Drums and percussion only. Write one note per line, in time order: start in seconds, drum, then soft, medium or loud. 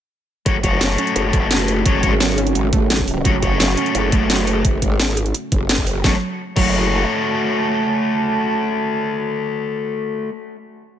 0.46 kick loud
0.46 closed hi-hat medium
0.63 kick medium
0.63 closed hi-hat medium
0.81 snare loud
0.81 closed hi-hat loud
0.98 closed hi-hat medium
1.07 closed hi-hat soft
1.16 closed hi-hat medium
1.33 kick loud
1.33 closed hi-hat medium
1.51 snare loud
1.51 closed hi-hat loud
1.59 closed hi-hat soft
1.68 open hi-hat medium
1.86 kick loud
1.86 closed hi-hat loud
2.03 kick medium
2.03 closed hi-hat medium
2.20 snare loud
2.20 closed hi-hat loud
2.38 closed hi-hat medium
2.47 closed hi-hat soft
2.55 closed hi-hat loud
2.73 kick loud
2.73 closed hi-hat medium
2.90 snare loud
2.90 closed hi-hat medium
2.99 kick medium
2.99 closed hi-hat soft
3.08 open hi-hat medium
3.25 kick loud
3.25 closed hi-hat medium
3.43 kick medium
3.43 closed hi-hat medium
3.60 snare loud
3.60 closed hi-hat loud
3.77 closed hi-hat medium
3.86 closed hi-hat soft
3.95 closed hi-hat medium
4.12 kick loud
4.12 closed hi-hat medium
4.30 snare loud
4.30 closed hi-hat medium
4.39 closed hi-hat soft
4.47 open hi-hat medium
4.65 kick loud
4.65 closed hi-hat medium
4.82 kick medium
4.82 closed hi-hat medium
5.00 snare loud
5.00 closed hi-hat medium
5.17 closed hi-hat medium
5.26 closed hi-hat soft
5.34 closed hi-hat medium
5.52 kick loud
5.52 closed hi-hat medium
5.69 snare loud
5.69 closed hi-hat medium
5.78 kick medium
5.78 closed hi-hat soft
5.87 open hi-hat medium
6.04 kick loud
6.04 snare medium
6.56 kick loud
6.56 crash medium